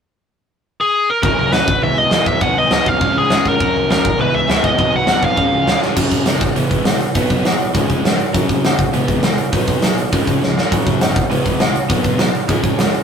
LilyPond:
<<
  \new Staff \with { instrumentName = "Lead electric guitar" } { \time 4/4 \key fis \mixolydian \tempo 4 = 202 r2 r8 gis'4 ais'8 | ais'4 b'4 e''8 dis''4 e''8 | fis''8 dis''8 dis''8 eis''4 gis'4 ais'8~ | ais'4 ais'4 b'8 e''4 dis''8~ |
dis''8 fis''4 eis''2 r8 | r1 | r1 | r1 |
r1 | r1 | r1 | }
  \new Staff \with { instrumentName = "Overdriven electric guitar" } { \clef bass \time 4/4 \key fis \mixolydian r1 | <fis, cis fis ais cis'>4 <fis, cis fis ais cis'>8 r8 <e gis b e'>4 <e gis b e'>4 | <b, fis b dis'>4 <b, fis b dis'>4 <cis eis gis cis'>4 <cis eis gis cis'>4 | <fis, cis fis ais cis'>4 <fis, cis fis ais cis'>8 r8 <e gis b e'>4 <e gis b e'>4 |
<b, fis b dis'>4 <b, fis b dis'>4 <cis eis gis cis'>4 <cis eis gis cis'>4 | <fis, cis fis>4 <fis, cis>8 r8 <e gis b>4 <e gis>8 r8 | <b, fis b>4 <b, fis>8 r8 <cis eis gis>4 <cis eis>8 r8 | <fis, cis fis>4 <fis, cis>8 r8 <e gis b>4 <e gis>8 r8 |
<b, fis b>4 <b, fis>8 r8 <cis eis gis>4 <cis eis>8 r8 | <fis, cis fis>4 <fis, cis>8 r8 <e gis b>4 <e gis>8 r8 | <b, fis b>4 <b, fis>8 r8 <cis eis gis>4 <cis eis>8 r8 | }
  \new Staff \with { instrumentName = "Distorted electric guitar" } { \clef bass \time 4/4 \key fis \mixolydian r1 | <fis, cis fis>4 <fis, cis fis>8 r8 <e, b, e>4 <e, b, e>4 | <b, fis b>4 <b, fis b>4 <cis gis cis'>4 <cis gis cis'>4 | <fis, cis fis>4 <fis, cis fis>8 r8 <e, b, e>4 <e, b, e>4 |
<b, fis b>4 <b, fis b>4 <cis gis cis'>4 <cis gis cis'>4 | <fis, cis fis>4 <fis, cis>8 r8 <e, b, e>4 <e, b,>8 r8 | <b, fis b>4 <b, fis>8 r8 <cis gis cis'>4 <cis gis>8 r8 | <fis, cis fis>4 <fis, cis>8 r8 <e, b, e>4 <e, b,>8 r8 |
<b, fis b>4 <b, fis>8 r8 <cis gis cis'>4 <cis gis>8 r8 | <fis, cis fis>4 <fis, cis>8 r8 <e, b, e>4 <e, b,>8 r8 | <b, fis b>4 <b, fis>8 r8 <cis gis cis'>4 <cis gis>8 r8 | }
  \new Staff \with { instrumentName = "Tuba" } { \clef bass \time 4/4 \key fis \mixolydian r1 | r1 | r1 | r1 |
r1 | fis,,8 fis,,8 b,,8 e,,8 e,,8 e,,8 e,,4 | b,,8 b,,8 e,8 b,,8 cis,8 cis,8 gis,4 | fis,,8 fis,,8 dis,8 e,,8 e,,8 e,,8 e,,4 |
b,,8 b,,8 e,8 b,,8 cis,8 cis,8 cis,4 | fis,,8 fis,,8 b,,8 e,,8 e,,8 e,,8 cis,4 | b,,8 b,,8 e,8 r8 cis,8 cis,8 cis,4 | }
  \new DrumStaff \with { instrumentName = "Drums" } \drummode { \time 4/4 r4 r4 r4 r4 | <bd tomfh>8 tomfh8 <sn tomfh>8 <bd tomfh>8 tomfh8 tomfh8 <sn tomfh>8 <bd tomfh>8 | <bd tomfh>8 tomfh8 <sn tomfh>8 <bd tomfh>8 <bd tomfh>8 tomfh8 <sn tomfh>8 <bd tomfh>8 | <bd tomfh>8 tomfh8 <sn tomfh>8 <bd tomfh>8 tomfh8 tomfh8 <sn tomfh>8 <bd tomfh>8 |
<bd tomfh>8 tomfh8 <sn tomfh>8 <bd tomfh>8 <bd tomfh>8 tomfh8 <sn tomfh>8 sn8 | <cymc bd>8 <hho bd>8 <hho sn>8 <hho bd>8 hho8 <hho bd>8 <hho sn>8 hho8 | <hho bd>8 <hho bd>8 <hho sn>8 hho8 <hho bd>8 <hho bd>8 <hho sn>8 hho8 | <hho bd>8 <hho bd>8 <hho sn>8 <hho bd>8 hho8 <hho bd>8 <hho sn>8 hho8 |
<hho bd>8 <hho bd>8 <hho sn>8 hho8 <hho bd>8 <hho bd>8 sn8 sn8 | <hho bd>8 <hho bd>8 <hho sn>8 <hho bd>8 hho8 <hho bd>8 <hho sn>8 hho8 | <hho bd>8 <hho bd>8 <hho sn>8 hho8 <hho bd>8 <hho bd>8 <hho sn>8 hho8 | }
>>